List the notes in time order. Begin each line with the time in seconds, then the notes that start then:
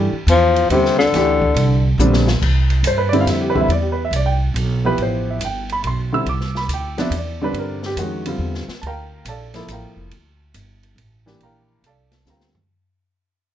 Already playing: G2 E3 A3 D4 G4
0.12 muted upright bass stroke
0.27 E2 F3, hi-hat pedal, ride
0.56 ride
0.70 D#2 C3 D3 G3 C4 G4, ride
0.85 snare
0.98 D3, snare
1.13 D2 E3 A3 D4 G4, snare, ride
1.42 kick
1.54 C2, ride
1.98 A#1 D3 G3 C4 D4, hi-hat pedal, high tom
2.13 snare
2.28 snare
2.42 C2, kick, crash
2.70 ride
2.83 G2, hi-hat pedal, ride
2.87 C5
2.98 B4
3.09 D3 D5, ride
3.13 G3 C4 E4
3.20 F5
3.26 F2, snare, ride
3.32 E5
3.42 G4
3.50 B4
3.55 D3 G3 C4 E4, kick
3.61 E5
3.68 E2 D5, ride
3.82 G4
3.92 B4
4.05 E5
4.11 C2, hi-hat pedal, ride
4.16 D5
4.26 G5
4.54 B1, ride
4.85 F3 B3 E4 G4 B4
4.97 A1, ride
5.02 C5
5.30 E5
5.39 G1, hi-hat pedal, ride
5.45 G5
5.69 B5, ride
5.84 B1 C6, ride
6.13 D3 G3 C4 E4 E6
6.26 C2 D6, ride
6.40 snare
6.55 B5, snare
6.68 D2, hi-hat pedal, ride
6.74 G5
6.97 C3 F3 B3 D4 E5, snare, ride
7.10 E2, ride
7.17 D5
7.42 D3 G3 C4 D4 B4
7.53 G2 A4, ride
7.59 A#4
7.83 G4, snare
7.96 F2 D#3 G#3 C#4 F#4, hi-hat pedal, ride
8.26 D3 G3 C4 F4, ride
8.39 E2
8.54 snare
8.68 muted upright bass stroke, snare
8.82 D2 A5, ride
8.86 A#4 F5 G5 A#5
9.25 A#1 A5, hi-hat pedal, ride
9.29 A4 D5 F5
9.54 F3 A#3 E4 A4, snare, ride
9.68 A1, hi-hat pedal, ride
9.72 A#4 F5 G5 A#5
9.82 G1
9.96 F1
10.11 D2, ride
10.54 G1, hi-hat pedal, ride
10.83 ride
10.96 A1, ride
11.26 E3 A#3 D4 G4, snare
11.40 A#1 A#4 F5 G5 A#5, ride
11.82 C2 A4, hi-hat pedal, ride
11.87 D5 F5 A5
12.12 snare, ride
12.25 D2 D3 G3 C4 F4, snare, hi-hat pedal
12.30 A#4 F5 G5 A#5
12.41 snare
12.55 floor tom